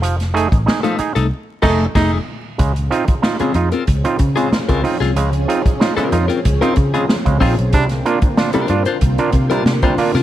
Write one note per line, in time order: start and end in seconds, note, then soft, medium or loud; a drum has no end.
0.02 0.47 F1 medium
0.02 0.16 F3 medium
0.02 closed hi-hat loud
0.20 snare soft
0.20 closed hi-hat medium
0.34 0.48 A3 medium
0.34 0.48 D#4 medium
0.34 0.48 G#4 loud
0.34 closed hi-hat medium
0.51 0.66 A1 loud
0.51 0.58 D#4 soft
0.51 0.58 G#4 soft
0.51 kick loud
0.51 closed hi-hat medium
0.66 0.80 D#4 medium
0.66 0.80 G#4 medium
0.66 snare loud
0.83 0.96 F3 medium
0.83 0.97 A3 medium
0.83 0.97 D#4 medium
0.83 0.96 A4 medium
0.83 closed hi-hat medium
0.99 1.12 D#4 medium
0.99 1.12 G#4 medium
0.99 muted picked electric bass stroke medium
0.99 closed hi-hat medium
1.15 1.30 C2 medium
1.15 1.27 A3 medium
1.15 1.26 D#4 medium
1.15 1.26 A4 medium
1.15 closed hi-hat medium
1.62 1.85 F1 medium
1.62 1.85 A3 medium
1.62 1.86 A3 medium
1.62 1.79 D#4 loud
1.62 1.85 D#4 medium
1.62 1.85 G#4 loud
1.62 1.85 A4 loud
1.62 kick loud
1.62 snare medium
1.62 crash medium
1.95 2.17 F1 loud
1.95 2.18 A3 medium
1.95 2.12 D#4 loud
1.95 2.18 D#4 medium
1.95 2.17 G#4 loud
1.95 kick loud
1.95 snare loud
1.95 crash medium
2.58 2.88 C#2 loud
2.58 2.72 C#3 medium
2.58 7.69 F3 medium
2.58 2.72 G#3 medium
2.58 10.23 C4 medium
2.58 7.69 C#4 medium
2.58 7.69 G#4 medium
2.58 kick loud
2.58 closed hi-hat loud
2.76 closed hi-hat medium
2.91 3.04 C4 medium
2.91 3.05 D#4 medium
2.91 3.05 F4 loud
2.91 closed hi-hat medium
3.08 3.14 D#4 soft
3.08 3.14 F4 soft
3.08 muted picked electric bass stroke soft
3.08 kick loud
3.08 closed hi-hat medium
3.22 3.36 D#4 medium
3.22 3.36 F4 medium
3.22 snare loud
3.39 3.52 C#3 medium
3.39 3.52 G#3 medium
3.39 3.54 C4 medium
3.39 3.54 F4 medium
3.39 3.53 G#4 medium
3.39 muted picked electric bass stroke soft
3.39 closed hi-hat medium
3.54 3.70 F2 medium
3.54 3.69 D#4 medium
3.54 3.69 F4 medium
3.54 closed hi-hat medium
3.72 3.83 C4 medium
3.72 3.83 F4 medium
3.72 3.82 A#4 medium
3.72 closed hi-hat soft
3.87 4.03 C#2 loud
3.87 kick medium
3.87 closed hi-hat medium
4.04 4.16 C4 medium
4.04 4.17 D#4 medium
4.04 4.17 F4 medium
4.04 closed hi-hat medium
4.19 4.35 C#3 loud
4.19 kick medium
4.19 closed hi-hat medium
4.36 4.48 C#3 medium
4.36 4.48 G#3 medium
4.36 4.50 C4 medium
4.36 4.49 F4 medium
4.36 4.49 G#4 medium
4.36 closed hi-hat medium
4.51 4.59 D#4 soft
4.51 4.59 F4 soft
4.51 muted picked electric bass stroke soft
4.51 snare medium
4.68 4.83 C#2 medium
4.68 4.81 C#3 medium
4.68 4.81 G#3 medium
4.68 4.82 C4 medium
4.68 4.82 F4 medium
4.68 4.81 A#4 medium
4.68 kick medium
4.68 closed hi-hat soft
4.83 4.97 C4 medium
4.83 4.97 D#4 medium
4.83 4.97 F4 medium
4.83 open hi-hat medium
5.00 5.14 C2 medium
5.00 5.11 C4 medium
5.00 5.11 F4 medium
5.00 5.11 G#4 medium
5.00 snare soft
5.00 closed hi-hat soft
5.16 5.45 C#2 medium
5.16 5.30 C#3 medium
5.16 5.30 G#3 medium
5.16 closed hi-hat medium
5.33 closed hi-hat medium
5.48 5.61 C4 medium
5.48 5.62 D#4 medium
5.48 5.62 F4 loud
5.48 closed hi-hat medium
5.65 5.71 D#4 soft
5.65 5.71 F4 soft
5.65 muted picked electric bass stroke soft
5.65 kick loud
5.65 closed hi-hat medium
5.80 5.94 D#4 medium
5.80 5.94 F4 medium
5.80 snare loud
5.97 6.09 C#3 medium
5.97 6.09 G#3 medium
5.97 6.17 C4 medium
5.97 6.17 F4 medium
5.97 6.16 A#4 medium
5.97 muted picked electric bass stroke soft
5.97 closed hi-hat soft
6.12 6.28 F2 medium
6.12 6.26 D#4 medium
6.12 6.26 F4 medium
6.12 closed hi-hat medium
6.28 6.40 C4 medium
6.28 6.39 F4 medium
6.28 6.39 A#4 medium
6.28 closed hi-hat soft
6.45 6.60 C#2 loud
6.45 kick loud
6.45 closed hi-hat medium
6.61 6.73 C4 medium
6.61 6.75 C4 medium
6.61 6.73 D#4 medium
6.61 6.74 F4 medium
6.61 6.73 F4 medium
6.61 6.74 A#4 medium
6.61 closed hi-hat medium
6.76 6.92 C#3 loud
6.76 kick medium
6.76 closed hi-hat medium
6.94 7.06 C#3 medium
6.94 7.06 G#3 medium
6.94 7.04 C4 medium
6.94 7.04 F4 medium
6.94 7.04 G#4 medium
6.94 closed hi-hat medium
7.08 7.15 D#4 soft
7.08 7.15 F4 soft
7.08 snare medium
7.25 7.39 C#2 medium
7.25 7.37 C#3 medium
7.25 7.37 G#3 medium
7.25 kick medium
7.25 closed hi-hat soft
7.40 7.56 A#1 medium
7.40 7.54 C4 medium
7.40 7.55 C4 medium
7.40 7.54 D#4 medium
7.40 7.54 F4 medium
7.40 7.55 F4 medium
7.40 7.56 G#4 medium
7.40 kick medium
7.40 open hi-hat medium
7.59 7.73 B1 medium
7.59 closed hi-hat medium
7.73 8.02 C2 medium
7.73 7.87 C3 medium
7.73 10.23 D3 medium
7.73 7.87 G3 medium
7.73 10.23 A#3 medium
7.73 7.85 D4 loud
7.73 10.23 F4 medium
7.73 kick loud
7.73 closed hi-hat loud
7.89 snare soft
7.89 closed hi-hat medium
8.05 8.18 A#3 loud
8.05 8.19 D4 medium
8.05 8.19 F4 loud
8.05 closed hi-hat medium
8.22 8.28 D4 soft
8.22 8.28 F4 soft
8.22 muted picked electric bass stroke soft
8.22 kick loud
8.22 closed hi-hat medium
8.37 8.50 D4 medium
8.37 8.51 F4 medium
8.37 snare loud
8.53 8.66 C3 medium
8.53 8.66 G3 medium
8.53 8.74 D4 medium
8.53 8.74 F4 medium
8.53 8.73 A#4 medium
8.53 muted picked electric bass stroke soft
8.53 closed hi-hat medium
8.68 8.85 G2 loud
8.68 8.83 D4 medium
8.68 8.83 F4 medium
8.68 closed hi-hat medium
8.85 8.97 D4 medium
8.85 8.97 F4 medium
8.85 8.96 C5 medium
8.85 closed hi-hat soft
9.01 9.17 C2 loud
9.01 kick medium
9.01 closed hi-hat medium
9.18 9.30 A#3 medium
9.18 9.30 D4 medium
9.18 9.30 F4 medium
9.18 closed hi-hat soft
9.32 9.49 C3 loud
9.32 kick medium
9.32 closed hi-hat medium
9.50 9.62 C3 medium
9.50 9.62 G3 medium
9.50 9.63 D4 medium
9.50 9.63 F4 medium
9.50 9.63 A#4 medium
9.50 closed hi-hat medium
9.65 9.81 C3 loud
9.65 9.73 D4 soft
9.65 9.73 F4 soft
9.65 snare medium
9.82 9.94 C3 medium
9.82 9.95 G3 medium
9.82 9.96 D4 medium
9.82 9.96 F4 medium
9.82 9.95 C5 medium
9.82 kick medium
9.82 closed hi-hat soft
9.98 10.11 A#3 medium
9.98 10.11 D4 medium
9.98 10.12 F4 medium
9.98 muted picked electric bass stroke soft
9.98 open hi-hat medium
10.15 10.23 C3 loud
10.15 10.23 D4 medium
10.15 10.23 F4 medium
10.15 10.23 A#4 medium
10.15 snare soft
10.15 closed hi-hat soft